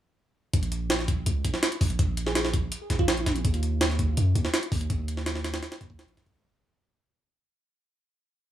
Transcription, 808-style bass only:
0, 0, Header, 1, 2, 480
1, 0, Start_track
1, 0, Key_signature, -5, "minor"
1, 0, Tempo, 363636
1, 708, Time_signature, 4, 2, 24, 8
1, 11242, End_track
2, 0, Start_track
2, 0, Title_t, "808-style bass"
2, 0, Program_c, 0, 38
2, 707, Note_on_c, 0, 34, 94
2, 1648, Note_off_c, 0, 34, 0
2, 1668, Note_on_c, 0, 37, 83
2, 1884, Note_off_c, 0, 37, 0
2, 1909, Note_on_c, 0, 34, 105
2, 2016, Note_off_c, 0, 34, 0
2, 2389, Note_on_c, 0, 34, 95
2, 2604, Note_off_c, 0, 34, 0
2, 2628, Note_on_c, 0, 34, 96
2, 3568, Note_off_c, 0, 34, 0
2, 3829, Note_on_c, 0, 34, 102
2, 4289, Note_off_c, 0, 34, 0
2, 4310, Note_on_c, 0, 34, 105
2, 4525, Note_off_c, 0, 34, 0
2, 4550, Note_on_c, 0, 39, 98
2, 5489, Note_off_c, 0, 39, 0
2, 5509, Note_on_c, 0, 42, 82
2, 5724, Note_off_c, 0, 42, 0
2, 5747, Note_on_c, 0, 39, 104
2, 5855, Note_off_c, 0, 39, 0
2, 6227, Note_on_c, 0, 39, 96
2, 6443, Note_off_c, 0, 39, 0
2, 6468, Note_on_c, 0, 39, 101
2, 7409, Note_off_c, 0, 39, 0
2, 7667, Note_on_c, 0, 39, 102
2, 7898, Note_off_c, 0, 39, 0
2, 7906, Note_on_c, 0, 34, 78
2, 8123, Note_off_c, 0, 34, 0
2, 8147, Note_on_c, 0, 34, 98
2, 8256, Note_off_c, 0, 34, 0
2, 8266, Note_on_c, 0, 37, 94
2, 8374, Note_off_c, 0, 37, 0
2, 11242, End_track
0, 0, End_of_file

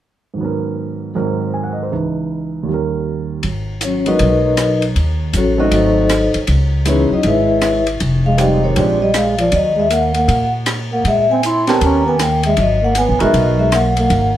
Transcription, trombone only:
0, 0, Header, 1, 2, 480
1, 0, Start_track
1, 0, Key_signature, 5, "minor"
1, 0, Tempo, 380952
1, 495, Time_signature, 4, 2, 24, 8
1, 18106, End_track
2, 0, Start_track
2, 0, Title_t, "Trombone"
2, 0, Program_c, 0, 57
2, 4846, Note_on_c, 0, 54, 47
2, 5110, Note_off_c, 0, 54, 0
2, 5118, Note_on_c, 0, 54, 64
2, 5278, Note_off_c, 0, 54, 0
2, 5316, Note_on_c, 0, 54, 61
2, 6042, Note_off_c, 0, 54, 0
2, 6742, Note_on_c, 0, 54, 53
2, 7024, Note_off_c, 0, 54, 0
2, 7034, Note_on_c, 0, 54, 54
2, 7194, Note_off_c, 0, 54, 0
2, 7219, Note_on_c, 0, 54, 68
2, 7952, Note_off_c, 0, 54, 0
2, 8650, Note_on_c, 0, 52, 53
2, 8936, Note_off_c, 0, 52, 0
2, 8958, Note_on_c, 0, 54, 67
2, 9115, Note_off_c, 0, 54, 0
2, 9143, Note_on_c, 0, 56, 66
2, 9873, Note_off_c, 0, 56, 0
2, 10412, Note_on_c, 0, 56, 65
2, 10561, Note_off_c, 0, 56, 0
2, 10591, Note_on_c, 0, 55, 54
2, 10866, Note_off_c, 0, 55, 0
2, 10890, Note_on_c, 0, 51, 58
2, 11040, Note_off_c, 0, 51, 0
2, 11064, Note_on_c, 0, 53, 54
2, 11343, Note_off_c, 0, 53, 0
2, 11364, Note_on_c, 0, 55, 65
2, 11517, Note_off_c, 0, 55, 0
2, 11540, Note_on_c, 0, 56, 73
2, 11820, Note_off_c, 0, 56, 0
2, 11830, Note_on_c, 0, 53, 67
2, 11990, Note_off_c, 0, 53, 0
2, 12004, Note_on_c, 0, 54, 53
2, 12289, Note_off_c, 0, 54, 0
2, 12297, Note_on_c, 0, 56, 70
2, 12463, Note_off_c, 0, 56, 0
2, 12478, Note_on_c, 0, 58, 63
2, 12769, Note_off_c, 0, 58, 0
2, 12792, Note_on_c, 0, 58, 66
2, 13239, Note_off_c, 0, 58, 0
2, 13758, Note_on_c, 0, 58, 64
2, 13915, Note_off_c, 0, 58, 0
2, 13942, Note_on_c, 0, 56, 61
2, 14223, Note_off_c, 0, 56, 0
2, 14240, Note_on_c, 0, 60, 75
2, 14396, Note_off_c, 0, 60, 0
2, 14424, Note_on_c, 0, 64, 72
2, 14704, Note_off_c, 0, 64, 0
2, 14719, Note_on_c, 0, 60, 63
2, 14876, Note_off_c, 0, 60, 0
2, 14908, Note_on_c, 0, 61, 79
2, 15187, Note_off_c, 0, 61, 0
2, 15199, Note_on_c, 0, 59, 71
2, 15357, Note_off_c, 0, 59, 0
2, 15374, Note_on_c, 0, 58, 55
2, 15660, Note_off_c, 0, 58, 0
2, 15700, Note_on_c, 0, 56, 71
2, 15848, Note_off_c, 0, 56, 0
2, 15864, Note_on_c, 0, 54, 58
2, 16146, Note_off_c, 0, 54, 0
2, 16153, Note_on_c, 0, 58, 73
2, 16314, Note_off_c, 0, 58, 0
2, 16341, Note_on_c, 0, 59, 74
2, 16625, Note_off_c, 0, 59, 0
2, 16641, Note_on_c, 0, 56, 77
2, 16799, Note_off_c, 0, 56, 0
2, 16819, Note_on_c, 0, 54, 59
2, 17104, Note_off_c, 0, 54, 0
2, 17128, Note_on_c, 0, 56, 64
2, 17283, Note_off_c, 0, 56, 0
2, 17314, Note_on_c, 0, 58, 69
2, 17593, Note_off_c, 0, 58, 0
2, 17612, Note_on_c, 0, 58, 75
2, 18055, Note_off_c, 0, 58, 0
2, 18106, End_track
0, 0, End_of_file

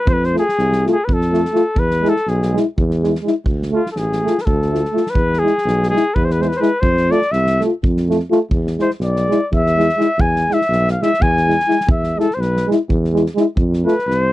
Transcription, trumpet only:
0, 0, Header, 1, 2, 480
1, 0, Start_track
1, 0, Tempo, 481928
1, 80, Time_signature, 7, 3, 24, 8
1, 14268, End_track
2, 0, Start_track
2, 0, Title_t, "Trumpet"
2, 0, Program_c, 0, 56
2, 0, Note_on_c, 0, 71, 92
2, 89, Note_on_c, 0, 72, 90
2, 104, Note_off_c, 0, 71, 0
2, 130, Note_on_c, 0, 71, 82
2, 145, Note_off_c, 0, 72, 0
2, 252, Note_on_c, 0, 72, 79
2, 267, Note_off_c, 0, 71, 0
2, 380, Note_off_c, 0, 72, 0
2, 386, Note_on_c, 0, 68, 93
2, 850, Note_off_c, 0, 68, 0
2, 924, Note_on_c, 0, 68, 85
2, 1041, Note_on_c, 0, 71, 45
2, 1056, Note_off_c, 0, 68, 0
2, 1128, Note_on_c, 0, 69, 72
2, 1143, Note_off_c, 0, 71, 0
2, 1787, Note_on_c, 0, 71, 93
2, 1802, Note_off_c, 0, 69, 0
2, 2084, Note_on_c, 0, 69, 88
2, 2099, Note_off_c, 0, 71, 0
2, 2280, Note_on_c, 0, 68, 68
2, 2295, Note_off_c, 0, 69, 0
2, 2565, Note_off_c, 0, 68, 0
2, 3728, Note_on_c, 0, 65, 72
2, 3874, Note_off_c, 0, 65, 0
2, 3902, Note_on_c, 0, 69, 57
2, 3959, Note_on_c, 0, 68, 78
2, 3974, Note_off_c, 0, 69, 0
2, 4397, Note_on_c, 0, 71, 49
2, 4412, Note_off_c, 0, 68, 0
2, 4436, Note_on_c, 0, 69, 63
2, 4451, Note_off_c, 0, 71, 0
2, 5080, Note_on_c, 0, 71, 81
2, 5095, Note_off_c, 0, 69, 0
2, 5366, Note_on_c, 0, 68, 92
2, 5381, Note_off_c, 0, 71, 0
2, 5866, Note_off_c, 0, 68, 0
2, 5872, Note_on_c, 0, 68, 88
2, 6121, Note_on_c, 0, 71, 71
2, 6136, Note_off_c, 0, 68, 0
2, 6222, Note_on_c, 0, 72, 60
2, 6237, Note_off_c, 0, 71, 0
2, 6297, Note_on_c, 0, 71, 77
2, 6312, Note_off_c, 0, 72, 0
2, 6390, Note_on_c, 0, 72, 59
2, 6405, Note_off_c, 0, 71, 0
2, 6456, Note_on_c, 0, 71, 66
2, 6471, Note_off_c, 0, 72, 0
2, 6540, Note_on_c, 0, 72, 71
2, 6555, Note_off_c, 0, 71, 0
2, 6555, Note_on_c, 0, 71, 93
2, 6570, Note_off_c, 0, 72, 0
2, 6777, Note_on_c, 0, 72, 93
2, 6792, Note_off_c, 0, 71, 0
2, 7087, Note_on_c, 0, 74, 90
2, 7102, Note_off_c, 0, 72, 0
2, 7289, Note_on_c, 0, 76, 96
2, 7304, Note_off_c, 0, 74, 0
2, 7588, Note_off_c, 0, 76, 0
2, 8780, Note_on_c, 0, 72, 79
2, 8875, Note_off_c, 0, 72, 0
2, 9001, Note_on_c, 0, 74, 73
2, 9465, Note_off_c, 0, 74, 0
2, 9513, Note_on_c, 0, 76, 90
2, 10167, Note_on_c, 0, 80, 80
2, 10182, Note_off_c, 0, 76, 0
2, 10492, Note_on_c, 0, 76, 91
2, 10507, Note_off_c, 0, 80, 0
2, 10867, Note_off_c, 0, 76, 0
2, 10873, Note_on_c, 0, 77, 68
2, 10977, Note_on_c, 0, 76, 94
2, 10992, Note_off_c, 0, 77, 0
2, 11177, Note_on_c, 0, 80, 89
2, 11192, Note_off_c, 0, 76, 0
2, 11840, Note_off_c, 0, 80, 0
2, 11860, Note_on_c, 0, 76, 70
2, 12142, Note_on_c, 0, 69, 80
2, 12157, Note_off_c, 0, 76, 0
2, 12291, Note_on_c, 0, 72, 53
2, 12306, Note_off_c, 0, 69, 0
2, 12358, Note_on_c, 0, 71, 66
2, 12373, Note_off_c, 0, 72, 0
2, 12639, Note_off_c, 0, 71, 0
2, 13803, Note_on_c, 0, 71, 77
2, 14014, Note_off_c, 0, 71, 0
2, 14014, Note_on_c, 0, 71, 93
2, 14123, Note_off_c, 0, 71, 0
2, 14123, Note_on_c, 0, 72, 93
2, 14268, Note_off_c, 0, 72, 0
2, 14268, End_track
0, 0, End_of_file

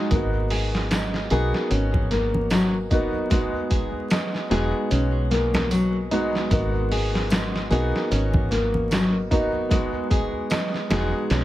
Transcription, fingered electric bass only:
0, 0, Header, 1, 2, 480
1, 0, Start_track
1, 0, Key_signature, 5, "minor"
1, 0, Tempo, 800000
1, 67, Time_signature, 4, 2, 24, 8
1, 6866, End_track
2, 0, Start_track
2, 0, Title_t, "Fingered electric bass"
2, 0, Program_c, 0, 33
2, 67, Note_on_c, 0, 32, 89
2, 767, Note_off_c, 0, 32, 0
2, 789, Note_on_c, 0, 35, 95
2, 909, Note_off_c, 0, 35, 0
2, 1027, Note_on_c, 0, 32, 85
2, 1967, Note_off_c, 0, 32, 0
2, 2708, Note_on_c, 0, 28, 93
2, 2828, Note_off_c, 0, 28, 0
2, 2950, Note_on_c, 0, 35, 86
2, 3889, Note_off_c, 0, 35, 0
2, 3906, Note_on_c, 0, 32, 91
2, 4607, Note_off_c, 0, 32, 0
2, 4626, Note_on_c, 0, 35, 97
2, 4748, Note_off_c, 0, 35, 0
2, 4870, Note_on_c, 0, 32, 82
2, 5809, Note_off_c, 0, 32, 0
2, 6547, Note_on_c, 0, 28, 95
2, 6668, Note_off_c, 0, 28, 0
2, 6783, Note_on_c, 0, 35, 85
2, 6866, Note_off_c, 0, 35, 0
2, 6866, End_track
0, 0, End_of_file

